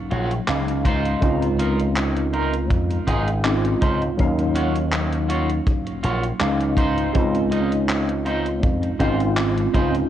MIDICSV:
0, 0, Header, 1, 5, 480
1, 0, Start_track
1, 0, Key_signature, -5, "major"
1, 0, Tempo, 740741
1, 793, Time_signature, 4, 2, 24, 8
1, 6540, End_track
2, 0, Start_track
2, 0, Title_t, "Clean electric guitar"
2, 0, Program_c, 0, 27
2, 69, Note_on_c, 0, 65, 83
2, 73, Note_on_c, 0, 66, 75
2, 76, Note_on_c, 0, 73, 92
2, 200, Note_off_c, 0, 65, 0
2, 202, Note_off_c, 0, 66, 0
2, 204, Note_off_c, 0, 73, 0
2, 549, Note_on_c, 0, 63, 88
2, 554, Note_on_c, 0, 65, 80
2, 557, Note_on_c, 0, 72, 96
2, 943, Note_off_c, 0, 63, 0
2, 945, Note_off_c, 0, 65, 0
2, 947, Note_off_c, 0, 72, 0
2, 1029, Note_on_c, 0, 63, 81
2, 1033, Note_on_c, 0, 65, 75
2, 1037, Note_on_c, 0, 70, 91
2, 1161, Note_off_c, 0, 63, 0
2, 1162, Note_off_c, 0, 65, 0
2, 1164, Note_off_c, 0, 70, 0
2, 1509, Note_on_c, 0, 63, 80
2, 1513, Note_on_c, 0, 65, 77
2, 1517, Note_on_c, 0, 70, 93
2, 1641, Note_off_c, 0, 63, 0
2, 1642, Note_off_c, 0, 65, 0
2, 1644, Note_off_c, 0, 70, 0
2, 1989, Note_on_c, 0, 63, 85
2, 1993, Note_on_c, 0, 65, 78
2, 1996, Note_on_c, 0, 68, 93
2, 2120, Note_off_c, 0, 63, 0
2, 2122, Note_off_c, 0, 65, 0
2, 2124, Note_off_c, 0, 68, 0
2, 2469, Note_on_c, 0, 63, 84
2, 2472, Note_on_c, 0, 65, 76
2, 2476, Note_on_c, 0, 72, 91
2, 2600, Note_off_c, 0, 63, 0
2, 2602, Note_off_c, 0, 65, 0
2, 2604, Note_off_c, 0, 72, 0
2, 2948, Note_on_c, 0, 65, 81
2, 2952, Note_on_c, 0, 66, 76
2, 2955, Note_on_c, 0, 73, 92
2, 3080, Note_off_c, 0, 65, 0
2, 3082, Note_off_c, 0, 66, 0
2, 3084, Note_off_c, 0, 73, 0
2, 3429, Note_on_c, 0, 65, 86
2, 3432, Note_on_c, 0, 66, 74
2, 3436, Note_on_c, 0, 73, 90
2, 3560, Note_off_c, 0, 65, 0
2, 3562, Note_off_c, 0, 66, 0
2, 3564, Note_off_c, 0, 73, 0
2, 3908, Note_on_c, 0, 65, 84
2, 3912, Note_on_c, 0, 66, 76
2, 3916, Note_on_c, 0, 73, 91
2, 4040, Note_off_c, 0, 65, 0
2, 4042, Note_off_c, 0, 66, 0
2, 4044, Note_off_c, 0, 73, 0
2, 4388, Note_on_c, 0, 63, 89
2, 4392, Note_on_c, 0, 65, 83
2, 4396, Note_on_c, 0, 72, 99
2, 4782, Note_off_c, 0, 63, 0
2, 4784, Note_off_c, 0, 65, 0
2, 4786, Note_off_c, 0, 72, 0
2, 4869, Note_on_c, 0, 63, 83
2, 4873, Note_on_c, 0, 65, 78
2, 4877, Note_on_c, 0, 75, 92
2, 5000, Note_off_c, 0, 63, 0
2, 5002, Note_off_c, 0, 65, 0
2, 5004, Note_off_c, 0, 75, 0
2, 5349, Note_on_c, 0, 63, 82
2, 5352, Note_on_c, 0, 65, 76
2, 5356, Note_on_c, 0, 72, 90
2, 5480, Note_off_c, 0, 63, 0
2, 5482, Note_off_c, 0, 65, 0
2, 5484, Note_off_c, 0, 72, 0
2, 5829, Note_on_c, 0, 63, 82
2, 5833, Note_on_c, 0, 65, 76
2, 5836, Note_on_c, 0, 72, 90
2, 5960, Note_off_c, 0, 63, 0
2, 5962, Note_off_c, 0, 65, 0
2, 5964, Note_off_c, 0, 72, 0
2, 6308, Note_on_c, 0, 63, 81
2, 6313, Note_on_c, 0, 65, 77
2, 6316, Note_on_c, 0, 72, 93
2, 6440, Note_off_c, 0, 63, 0
2, 6442, Note_off_c, 0, 65, 0
2, 6444, Note_off_c, 0, 72, 0
2, 6540, End_track
3, 0, Start_track
3, 0, Title_t, "Tine electric piano"
3, 0, Program_c, 1, 4
3, 0, Control_c, 1, 64, 127
3, 0, Note_on_c, 1, 54, 87
3, 0, Note_on_c, 1, 58, 78
3, 0, Note_on_c, 1, 61, 78
3, 0, Note_on_c, 1, 63, 79
3, 0, Note_on_c, 1, 77, 92
3, 281, Note_off_c, 1, 54, 0
3, 283, Note_off_c, 1, 58, 0
3, 286, Note_off_c, 1, 61, 0
3, 288, Note_off_c, 1, 63, 0
3, 290, Note_off_c, 1, 77, 0
3, 308, Note_on_c, 1, 56, 82
3, 313, Note_on_c, 1, 61, 72
3, 315, Note_on_c, 1, 63, 75
3, 318, Note_on_c, 1, 77, 89
3, 562, Control_c, 1, 64, 0
3, 693, Control_c, 1, 64, 127
3, 764, Note_off_c, 1, 56, 0
3, 767, Note_off_c, 1, 61, 0
3, 767, Note_off_c, 1, 63, 0
3, 769, Note_off_c, 1, 77, 0
3, 783, Note_on_c, 1, 56, 89
3, 788, Note_on_c, 1, 60, 79
3, 792, Note_on_c, 1, 61, 81
3, 798, Note_on_c, 1, 63, 81
3, 802, Note_on_c, 1, 65, 95
3, 2202, Note_off_c, 1, 56, 0
3, 2204, Note_off_c, 1, 60, 0
3, 2206, Note_off_c, 1, 61, 0
3, 2209, Note_off_c, 1, 63, 0
3, 2211, Note_off_c, 1, 65, 0
3, 2227, Note_on_c, 1, 56, 81
3, 2230, Note_on_c, 1, 60, 74
3, 2232, Note_on_c, 1, 61, 74
3, 2235, Note_on_c, 1, 63, 74
3, 2236, Note_on_c, 1, 65, 90
3, 2684, Note_off_c, 1, 56, 0
3, 2685, Note_off_c, 1, 60, 0
3, 2686, Note_off_c, 1, 61, 0
3, 2687, Note_off_c, 1, 63, 0
3, 2688, Note_off_c, 1, 65, 0
3, 2702, Note_on_c, 1, 54, 85
3, 2707, Note_on_c, 1, 58, 81
3, 2711, Note_on_c, 1, 61, 81
3, 2716, Note_on_c, 1, 63, 82
3, 2720, Control_c, 1, 64, 0
3, 2721, Note_on_c, 1, 77, 98
3, 2851, Control_c, 1, 64, 127
3, 4121, Note_off_c, 1, 54, 0
3, 4123, Note_off_c, 1, 58, 0
3, 4126, Note_off_c, 1, 61, 0
3, 4128, Note_off_c, 1, 63, 0
3, 4131, Note_off_c, 1, 77, 0
3, 4146, Note_on_c, 1, 56, 80
3, 4149, Note_on_c, 1, 61, 75
3, 4152, Note_on_c, 1, 63, 74
3, 4156, Note_on_c, 1, 77, 91
3, 4400, Control_c, 1, 64, 0
3, 4505, Control_c, 1, 64, 127
3, 4603, Note_off_c, 1, 56, 0
3, 4605, Note_off_c, 1, 61, 0
3, 4606, Note_off_c, 1, 63, 0
3, 4608, Note_off_c, 1, 77, 0
3, 4621, Note_on_c, 1, 56, 89
3, 4626, Note_on_c, 1, 60, 81
3, 4631, Note_on_c, 1, 61, 79
3, 4636, Note_on_c, 1, 63, 81
3, 4640, Note_on_c, 1, 65, 98
3, 5805, Note_off_c, 1, 56, 0
3, 5808, Note_off_c, 1, 60, 0
3, 5810, Note_off_c, 1, 61, 0
3, 5812, Note_off_c, 1, 63, 0
3, 5815, Note_off_c, 1, 65, 0
3, 5827, Note_on_c, 1, 56, 93
3, 5829, Note_on_c, 1, 60, 84
3, 5831, Note_on_c, 1, 61, 84
3, 5834, Note_on_c, 1, 63, 85
3, 5836, Note_on_c, 1, 65, 106
3, 6284, Note_off_c, 1, 56, 0
3, 6285, Note_off_c, 1, 60, 0
3, 6285, Note_off_c, 1, 61, 0
3, 6287, Note_off_c, 1, 63, 0
3, 6288, Note_off_c, 1, 65, 0
3, 6308, Note_on_c, 1, 56, 80
3, 6310, Note_on_c, 1, 60, 72
3, 6312, Note_on_c, 1, 61, 72
3, 6314, Note_on_c, 1, 63, 72
3, 6317, Note_on_c, 1, 65, 87
3, 6517, Note_off_c, 1, 56, 0
3, 6519, Note_off_c, 1, 60, 0
3, 6519, Note_off_c, 1, 61, 0
3, 6520, Note_off_c, 1, 63, 0
3, 6522, Note_off_c, 1, 65, 0
3, 6540, End_track
4, 0, Start_track
4, 0, Title_t, "Slap bass"
4, 0, Program_c, 2, 36
4, 74, Note_on_c, 2, 34, 91
4, 248, Note_off_c, 2, 34, 0
4, 313, Note_on_c, 2, 37, 84
4, 741, Note_off_c, 2, 37, 0
4, 792, Note_on_c, 2, 37, 97
4, 1751, Note_off_c, 2, 37, 0
4, 1751, Note_on_c, 2, 41, 83
4, 1927, Note_off_c, 2, 41, 0
4, 1991, Note_on_c, 2, 32, 98
4, 2420, Note_off_c, 2, 32, 0
4, 2474, Note_on_c, 2, 37, 94
4, 2649, Note_off_c, 2, 37, 0
4, 2718, Note_on_c, 2, 39, 97
4, 3624, Note_off_c, 2, 39, 0
4, 3914, Note_on_c, 2, 34, 90
4, 4089, Note_off_c, 2, 34, 0
4, 4152, Note_on_c, 2, 37, 84
4, 4581, Note_off_c, 2, 37, 0
4, 4636, Note_on_c, 2, 37, 98
4, 5596, Note_off_c, 2, 37, 0
4, 5596, Note_on_c, 2, 41, 81
4, 5769, Note_off_c, 2, 41, 0
4, 5833, Note_on_c, 2, 32, 94
4, 6261, Note_off_c, 2, 32, 0
4, 6313, Note_on_c, 2, 37, 94
4, 6488, Note_off_c, 2, 37, 0
4, 6540, End_track
5, 0, Start_track
5, 0, Title_t, "Drums"
5, 73, Note_on_c, 9, 42, 91
5, 137, Note_off_c, 9, 42, 0
5, 202, Note_on_c, 9, 42, 38
5, 266, Note_off_c, 9, 42, 0
5, 313, Note_on_c, 9, 39, 109
5, 313, Note_on_c, 9, 42, 65
5, 378, Note_off_c, 9, 39, 0
5, 378, Note_off_c, 9, 42, 0
5, 443, Note_on_c, 9, 42, 39
5, 507, Note_off_c, 9, 42, 0
5, 552, Note_on_c, 9, 36, 92
5, 553, Note_on_c, 9, 42, 92
5, 617, Note_off_c, 9, 36, 0
5, 618, Note_off_c, 9, 42, 0
5, 683, Note_on_c, 9, 42, 40
5, 748, Note_off_c, 9, 42, 0
5, 792, Note_on_c, 9, 36, 113
5, 793, Note_on_c, 9, 42, 65
5, 857, Note_off_c, 9, 36, 0
5, 858, Note_off_c, 9, 42, 0
5, 922, Note_on_c, 9, 42, 39
5, 987, Note_off_c, 9, 42, 0
5, 1033, Note_on_c, 9, 42, 88
5, 1098, Note_off_c, 9, 42, 0
5, 1163, Note_on_c, 9, 42, 40
5, 1228, Note_off_c, 9, 42, 0
5, 1273, Note_on_c, 9, 39, 116
5, 1273, Note_on_c, 9, 42, 65
5, 1338, Note_off_c, 9, 39, 0
5, 1338, Note_off_c, 9, 42, 0
5, 1403, Note_on_c, 9, 42, 39
5, 1468, Note_off_c, 9, 42, 0
5, 1513, Note_on_c, 9, 42, 93
5, 1578, Note_off_c, 9, 42, 0
5, 1642, Note_on_c, 9, 42, 41
5, 1707, Note_off_c, 9, 42, 0
5, 1752, Note_on_c, 9, 36, 114
5, 1753, Note_on_c, 9, 42, 69
5, 1817, Note_off_c, 9, 36, 0
5, 1818, Note_off_c, 9, 42, 0
5, 1882, Note_on_c, 9, 42, 39
5, 1947, Note_off_c, 9, 42, 0
5, 1992, Note_on_c, 9, 36, 58
5, 1993, Note_on_c, 9, 42, 90
5, 2056, Note_off_c, 9, 36, 0
5, 2057, Note_off_c, 9, 42, 0
5, 2123, Note_on_c, 9, 42, 38
5, 2188, Note_off_c, 9, 42, 0
5, 2234, Note_on_c, 9, 39, 118
5, 2234, Note_on_c, 9, 42, 65
5, 2299, Note_off_c, 9, 39, 0
5, 2299, Note_off_c, 9, 42, 0
5, 2363, Note_on_c, 9, 42, 41
5, 2427, Note_off_c, 9, 42, 0
5, 2473, Note_on_c, 9, 42, 97
5, 2474, Note_on_c, 9, 36, 112
5, 2538, Note_off_c, 9, 42, 0
5, 2539, Note_off_c, 9, 36, 0
5, 2603, Note_on_c, 9, 42, 40
5, 2667, Note_off_c, 9, 42, 0
5, 2714, Note_on_c, 9, 42, 66
5, 2718, Note_on_c, 9, 36, 121
5, 2779, Note_off_c, 9, 42, 0
5, 2782, Note_off_c, 9, 36, 0
5, 2842, Note_on_c, 9, 42, 37
5, 2907, Note_off_c, 9, 42, 0
5, 2952, Note_on_c, 9, 42, 86
5, 3017, Note_off_c, 9, 42, 0
5, 3083, Note_on_c, 9, 42, 38
5, 3148, Note_off_c, 9, 42, 0
5, 3193, Note_on_c, 9, 39, 120
5, 3193, Note_on_c, 9, 42, 64
5, 3258, Note_off_c, 9, 39, 0
5, 3258, Note_off_c, 9, 42, 0
5, 3322, Note_on_c, 9, 42, 38
5, 3387, Note_off_c, 9, 42, 0
5, 3434, Note_on_c, 9, 42, 91
5, 3499, Note_off_c, 9, 42, 0
5, 3562, Note_on_c, 9, 42, 38
5, 3627, Note_off_c, 9, 42, 0
5, 3673, Note_on_c, 9, 36, 121
5, 3673, Note_on_c, 9, 42, 66
5, 3738, Note_off_c, 9, 36, 0
5, 3738, Note_off_c, 9, 42, 0
5, 3802, Note_on_c, 9, 42, 37
5, 3867, Note_off_c, 9, 42, 0
5, 3912, Note_on_c, 9, 42, 90
5, 3977, Note_off_c, 9, 42, 0
5, 4041, Note_on_c, 9, 42, 38
5, 4105, Note_off_c, 9, 42, 0
5, 4152, Note_on_c, 9, 39, 121
5, 4152, Note_on_c, 9, 42, 64
5, 4217, Note_off_c, 9, 39, 0
5, 4217, Note_off_c, 9, 42, 0
5, 4282, Note_on_c, 9, 42, 39
5, 4347, Note_off_c, 9, 42, 0
5, 4387, Note_on_c, 9, 36, 108
5, 4393, Note_on_c, 9, 42, 90
5, 4452, Note_off_c, 9, 36, 0
5, 4458, Note_off_c, 9, 42, 0
5, 4523, Note_on_c, 9, 42, 40
5, 4587, Note_off_c, 9, 42, 0
5, 4633, Note_on_c, 9, 42, 62
5, 4636, Note_on_c, 9, 36, 112
5, 4698, Note_off_c, 9, 42, 0
5, 4701, Note_off_c, 9, 36, 0
5, 4762, Note_on_c, 9, 42, 37
5, 4827, Note_off_c, 9, 42, 0
5, 4873, Note_on_c, 9, 42, 85
5, 4938, Note_off_c, 9, 42, 0
5, 5003, Note_on_c, 9, 42, 36
5, 5068, Note_off_c, 9, 42, 0
5, 5114, Note_on_c, 9, 39, 115
5, 5114, Note_on_c, 9, 42, 62
5, 5179, Note_off_c, 9, 39, 0
5, 5179, Note_off_c, 9, 42, 0
5, 5243, Note_on_c, 9, 42, 36
5, 5307, Note_off_c, 9, 42, 0
5, 5353, Note_on_c, 9, 42, 88
5, 5418, Note_off_c, 9, 42, 0
5, 5483, Note_on_c, 9, 42, 38
5, 5548, Note_off_c, 9, 42, 0
5, 5594, Note_on_c, 9, 42, 65
5, 5595, Note_on_c, 9, 36, 121
5, 5659, Note_off_c, 9, 42, 0
5, 5660, Note_off_c, 9, 36, 0
5, 5723, Note_on_c, 9, 42, 36
5, 5788, Note_off_c, 9, 42, 0
5, 5833, Note_on_c, 9, 36, 60
5, 5834, Note_on_c, 9, 42, 91
5, 5897, Note_off_c, 9, 36, 0
5, 5899, Note_off_c, 9, 42, 0
5, 5964, Note_on_c, 9, 42, 37
5, 6029, Note_off_c, 9, 42, 0
5, 6074, Note_on_c, 9, 39, 117
5, 6074, Note_on_c, 9, 42, 63
5, 6139, Note_off_c, 9, 39, 0
5, 6139, Note_off_c, 9, 42, 0
5, 6204, Note_on_c, 9, 42, 38
5, 6269, Note_off_c, 9, 42, 0
5, 6313, Note_on_c, 9, 36, 107
5, 6314, Note_on_c, 9, 42, 87
5, 6378, Note_off_c, 9, 36, 0
5, 6379, Note_off_c, 9, 42, 0
5, 6444, Note_on_c, 9, 42, 39
5, 6509, Note_off_c, 9, 42, 0
5, 6540, End_track
0, 0, End_of_file